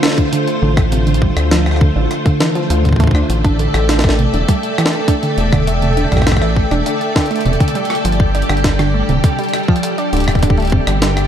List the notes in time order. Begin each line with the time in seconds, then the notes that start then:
Already playing: D3 A3 F4 C5
0.03 cross-stick, snare, closed hi-hat
0.05 snare
0.08 snare
0.10 snare
0.13 snare
0.15 D3, kick, snare, closed hi-hat
0.33 D3, closed hi-hat
0.48 closed hi-hat
0.62 A1 D3
0.77 A3, kick, cross-stick, closed hi-hat
0.92 C3, closed hi-hat
1.07 D3, closed hi-hat
1.14 closed hi-hat
1.22 G3, kick
1.37 D2, cross-stick, closed hi-hat
1.51 F3, snare, closed hi-hat
1.66 cross-stick
1.71 cross-stick
1.76 cross-stick
1.81 D3, kick
1.96 A1 D3
2.11 cross-stick, closed hi-hat
2.26 D3, kick, closed hi-hat
2.40 E3, snare, closed hi-hat
2.55 F3, closed hi-hat
2.70 D2 F3, closed hi-hat
2.85 D3, kick, closed hi-hat
2.89 kick
2.93 kick
2.96 A3, kick
3.00 kick, closed hi-hat
3.04 kick
3.07 kick
3.11 D4, kick, cross-stick
3.30 A1 A3 A4 D5 E5 G5, closed hi-hat
3.44 D4, kick, closed hi-hat
3.59 D3, closed hi-hat
3.74 A1, cross-stick, closed hi-hat
3.89 D3, snare, closed hi-hat
3.99 snare
4.04 A3, kick, cross-stick
4.09 snare
4.19 C3, closed hi-hat
4.34 E1 D3, closed hi-hat
4.48 G3, kick, closed hi-hat
4.63 closed hi-hat
4.78 E3, cross-stick, closed hi-hat
4.86 snare
4.93 closed hi-hat
5.08 D4, kick, closed hi-hat
5.23 D3, closed hi-hat
5.38 E1, closed hi-hat
5.52 D3, kick, cross-stick, closed hi-hat
5.67 A3, closed hi-hat
5.82 C3, closed hi-hat
5.97 D3, closed hi-hat
6.12 A1 G3, kick, cross-stick, closed hi-hat
6.17 kick, cross-stick
6.22 kick, cross-stick
6.27 kick, cross-stick, snare, closed hi-hat
6.32 kick, cross-stick
6.37 kick, cross-stick
6.42 E3, cross-stick, closed hi-hat
6.56 kick
6.71 E1 D4, cross-stick, closed hi-hat
6.86 D3, closed hi-hat
7.01 closed hi-hat
7.16 D3, kick, snare, closed hi-hat
7.21 closed hi-hat
7.26 closed hi-hat
7.31 A3, closed hi-hat
7.36 closed hi-hat
7.41 closed hi-hat
7.45 E1 C3, closed hi-hat
7.53 closed hi-hat
7.60 D3, kick, closed hi-hat
7.68 closed hi-hat
7.75 G3, closed hi-hat
7.85 closed hi-hat
7.90 cross-stick, closed hi-hat
7.95 closed hi-hat
8.05 G1 F3 G3 G4, closed hi-hat
8.12 closed hi-hat
8.20 kick
8.35 D4, closed hi-hat
8.42 closed hi-hat
8.49 G1 D3, cross-stick, closed hi-hat
8.57 closed hi-hat
8.64 kick, snare, closed hi-hat
8.79 D3, cross-stick, closed hi-hat
8.94 A3
9.09 D1 C3, closed hi-hat
9.24 D3, kick, closed hi-hat
9.39 G3, closed hi-hat
9.44 closed hi-hat
9.49 closed hi-hat
9.54 cross-stick, closed hi-hat
9.63 closed hi-hat
9.68 F3, kick
9.76 closed hi-hat
9.83 closed hi-hat
9.98 D4, closed hi-hat
10.13 D1 D3, closed hi-hat
10.17 closed hi-hat
10.20 closed hi-hat
10.24 cross-stick, closed hi-hat
10.28 kick, closed hi-hat
10.31 closed hi-hat
10.35 kick, closed hi-hat
10.39 closed hi-hat
10.43 D3, kick, closed hi-hat
10.50 kick
10.57 A3, closed hi-hat
10.60 closed hi-hat
10.62 closed hi-hat
10.65 closed hi-hat
10.67 closed hi-hat
10.70 C3, kick, closed hi-hat
10.87 G1 D3, cross-stick, closed hi-hat
11.02 G3, snare, closed hi-hat
11.17 cross-stick, closed hi-hat